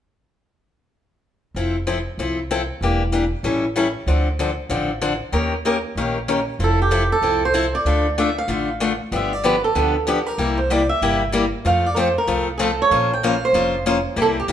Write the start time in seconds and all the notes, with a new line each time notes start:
1.55 F1 F3 C4 E4 A4
1.87 F3 C4 E4 A4
2.18 C2 F3 C4 E4 A4
2.51 F3 C4 E4 A4
2.81 E1 E3 A#3 D4 G4
3.12 E3 A#3 D4 G4
3.43 A1 E3 G3 C#4 E4 A4
3.76 E3 G3 C#4 E4 A4
4.06 D2 D3 F3 C4 D4 A4
4.39 D3 F3 C4 D4 A4
4.69 A1 D3 F3 C4 D4 A4
5.01 D3 F3 C4 D4 A4
5.32 D#2 D#3 A#3 C#4 G4 A#4
5.65 D#3 A#3 C#4 G4 A#4
5.95 A#1 D#3 A#3 C#4 G4 A#4
6.28 D#3 A#3 C#4 G4 A#4
6.59 F1 F3 C4 E4 A4
6.64 A4
6.82 G4
6.91 F3 C4 E4 A4
7.12 A4
7.22 C2 F3 C4 E4 A4
7.45 C5
7.54 F3 C4 E4 A4
7.75 D5
7.85 D2 D3 A3 D4 F4 A4
8.18 D3 A3 D4 F4 A4 E5
8.38 F5
8.48 A1 D3 A3 D4 F4 A4
8.80 D3 A3 D4 F4 A4
9.12 G1 D3 F3 B3 D4 G4
9.16 E5
9.33 D5
9.44 D3 F3 B3 D4 G4 B4
9.64 A4
9.75 D2 D3 F3 B3 D4 G4
10.07 D3 F3 B3 D4 G4
10.26 A#4
10.38 C2 C3 G3 A#3 E4 G4
10.58 C5
10.70 C3 G3 A#3 E4 G4 D5
10.89 E5
11.01 G1 C3 G3 A#3 E4 G4
11.32 C3 G3 A#3 E4 G4
11.65 F2 F3 A3 C4 F4 A4 F5
11.86 D5
11.95 F3 A3 C4 F4 A4 A#4
11.99 C5
12.18 A#4
12.27 C2 F3 A3 C4 F4 A4
12.58 F3 A3 C4 F4 G#4 A4
12.63 A4
12.82 C#5
12.91 A#1 F3 A#3 C#4 F4 C5
13.13 G5
13.23 F3 A#3 C#4 F4 C5 F5
13.45 C5
13.53 F1 F3 A#3 C#4 F4 C5
13.86 F3 A#3 C#4 F4 C5
14.16 C2 C3 G3 A#3 E4 G4
14.22 A4
14.40 G4
14.48 C2 C3 G3 A#3 E4